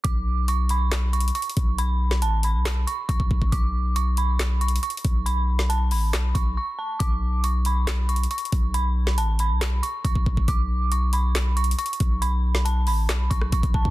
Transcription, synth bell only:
X:1
M:4/4
L:1/8
Q:1/4=138
K:Bm
V:1 name="Synth bell"
d'2 c' b2 c' c' z | b2 a b2 c' c' z | d'2 c' b2 c' c' z | b2 a b2 c' c' a |
d'2 c' b2 c' c' z | b2 a b2 c' c' z | d'2 c' b2 c' c' z | b2 a b2 c' c' a |]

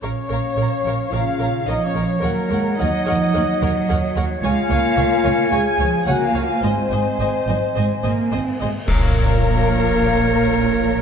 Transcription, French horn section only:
X:1
M:4/4
L:1/8
Q:1/4=109
K:Bbm
V:1 name="French horn section"
D4 F2 (3E D D | B,2 E4- E z | F4 A2 (3G F F | C6 z2 |
B,8 |]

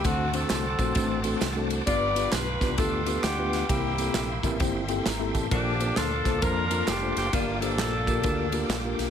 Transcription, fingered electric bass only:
X:1
M:4/4
L:1/8
Q:"Swing" 1/4=132
K:Gdor
V:1 name="Fingered electric bass" clef=bass
D,,2 C,, B,,, A,,,2 C,,2 | G,,,2 =B,,, C,, D,,2 D,,2 | C,,2 B,,, A,,, G,,,2 _A,,, =A,,, | B,,,2 D,, C,, F,,2 F,,, _G,,, |
G,,,2 B,,,2 D,,2 B,,, =B,,, |]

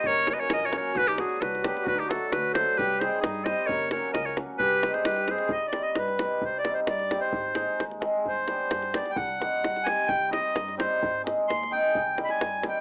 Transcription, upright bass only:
X:1
M:2/4
L:1/8
Q:1/4=131
K:none
V:1 name="Upright bass" clef=bass
^F,,,2 ^A,,,2 | B,,,2 C,,2 | D,,2 D,,2 | C,,2 G,,2 |
^F,,,2 ^C,,2 | C,,2 G,,2 | C,,2 G,,2 | C,,2 G,,2 |
_A,,,2 _E,,2 | G,,,2 G,,2 | C,,2 G,,2 | C,,2 G,,2 |
_A,,,2 _E,,2 | C,,2 G,,2 |]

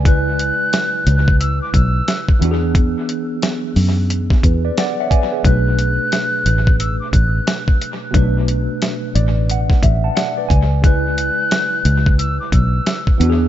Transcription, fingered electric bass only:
X:1
M:4/4
L:1/8
Q:"Swing 16ths" 1/4=89
K:C#phr
V:1 name="Fingered electric bass" clef=bass
C,,2 z C,,2 B,,, z E,,- | E,, z2 F,,2 E,, z2 | B,,,2 z A,,,2 A,,, z2 | B,,,2 z A,,,2 A,,, z C,,- |
C,,2 z C,,2 B,,, z E,, |]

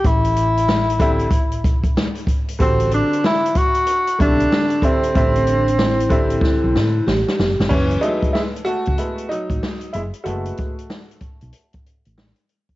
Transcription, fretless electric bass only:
X:1
M:4/4
L:1/16
Q:"Swing 16ths" 1/4=94
K:Alyd
V:1 name="Fretless electric bass" clef=bass
A,,,8- A,,,2 B,,,3 z3 | A,,,3 z6 z B,,,2 z4 | A,,,8 z B,,, A,,2 A,,, z F,,, =G,,, | F,,,2 z4 z C,, z3 A,,, z2 F,,, z |
F,,,2 z4 z B,,, z3 A,,,2 z3 |]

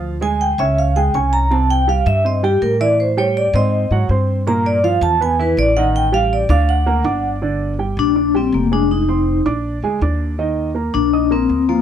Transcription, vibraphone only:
X:1
M:4/4
L:1/16
Q:1/4=162
K:Gm
V:1 name="Vibraphone"
z2 _a2 g2 =e2 f2 g2 ^g2 b2 | a2 g2 f2 =e2 _e2 G2 B2 d2 | c2 ^c2 d2 e4 z6 | b2 d2 f2 a2 _a2 =B2 d2 ^f2 |
g2 f2 d2 f2 ^f6- f z | z6 D4 C2 B,2 D2 | E6 z8 z2 | z6 D4 C4 B,2 |]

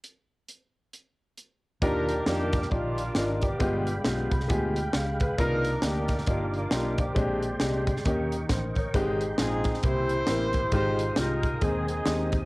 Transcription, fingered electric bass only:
X:1
M:4/4
L:1/8
Q:"Swing" 1/4=135
K:Eb
V:1 name="Fingered electric bass" clef=bass
z8 | E,,2 F,,2 B,,,2 A,,,2 | G,,,2 =B,,, C,, D,,2 _D,,2 | C,,2 D,,2 G,,,2 _C,,2 |
B,,,2 C,,2 E,,2 =A,,,2 | A,,,2 B,,,2 C,,2 =A,,,2 | A,,,2 C,,2 E,,2 E,,2 |]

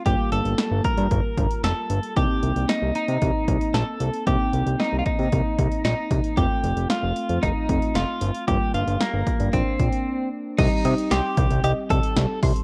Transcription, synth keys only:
X:1
M:4/4
L:1/8
Q:1/4=114
K:Cdor
V:1 name="Synth keys"
[G,B,F]8 | [B,CE]8 | [B,CE]8 | [A,CF]4- [A,CF] [A,CF]3 |
[G,B,F]4 [B,CD]4 | [G,CEG]8 |]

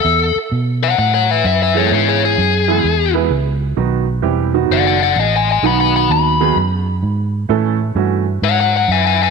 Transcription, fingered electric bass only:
X:1
M:4/4
L:1/8
Q:"Swing" 1/4=129
K:Bmix
V:1 name="Fingered electric bass" clef=bass
E,, z B,,2 A,,2 F,,2 | G,,2 F,,2 E,,2 C,,2 | B,,,2 E,,,2 F,,,2 A,,,2 | B,,,2 D,,2 F,,2 G,,2 |
A,,2 =G,,2 ^G,,2 F,,2 |]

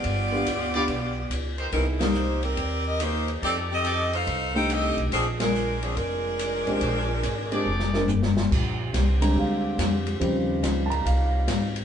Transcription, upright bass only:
X:1
M:4/4
L:1/8
Q:"Swing" 1/4=142
K:Bbmix
V:1 name="Upright bass" clef=bass
G,,,2 D,,2 =B,,,2 _D,,2 | C,,4 E,,4 | F,,4 C,,3 _C,, | B,,,4 F,,,3 =A,,, |
B,,,2 A,,,2 F,,,4 | B,,,2 C,,2 D,,2 F,,2 | E,,2 _D,,2 C,,2 A,,,2 |]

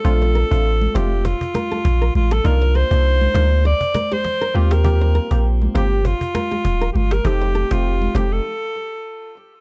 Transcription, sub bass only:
X:1
M:4/4
L:1/16
Q:"Swing 16ths" 1/4=100
K:Bb
V:1 name="Sub bass" clef=bass
B,,,3 A,,,3 F,,,3 z3 B,,,2 A,,,2 | C,,3 C,,3 D,,3 z4 z E,,2- | E,,3 B,,,3 G,,,3 z3 E,,,2 G,,,2 | F,,,3 F,,,3 F,,,2 z8 |]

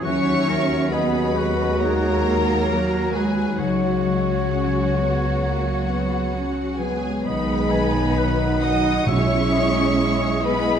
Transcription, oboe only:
X:1
M:4/4
L:1/8
Q:1/4=67
K:B
V:1 name="Oboe"
F A G F2 z A B | c6- c z | d g f2 e d3 |]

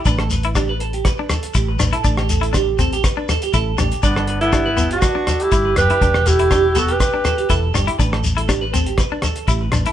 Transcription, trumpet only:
X:1
M:4/4
L:1/16
Q:"Swing 16ths" 1/4=121
K:Ador
V:1 name="Trumpet"
z16 | z16 | B,3 B,4 D4 E3 G2- | G2 E4 F G6 z3 |
z16 |]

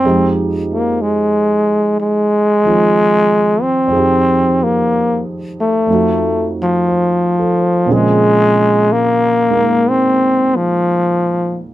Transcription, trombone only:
X:1
M:4/4
L:1/8
Q:"Swing" 1/4=61
K:Fm
V:1 name="Trombone"
C B, A,2 A,3 C- | C B, z =A,2 F,3 | [K:Bbm] A,2 B,2 C F,2 z |]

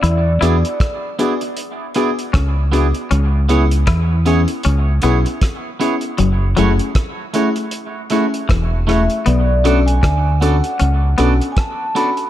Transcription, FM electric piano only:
X:1
M:4/4
L:1/16
Q:"Swing 16ths" 1/4=78
K:Bdor
V:1 name="FM electric piano"
z2 [B,DFG] z3 [B,DFG] [FG] z2 [B,DFG] z3 [B,DFG] z | z2 [B,CEG] z3 [B,CEG] [EG] z2 [B,CEG] z3 [B,CEG] [EG] | z2 [A,CEG] z3 [A,CEG] [EG] z2 [A,CEG] z3 [A,CEG] z | z2 [CDFA] z3 [CDFA] [FA] z2 [CDFA] z3 [CDFA] [FA] |]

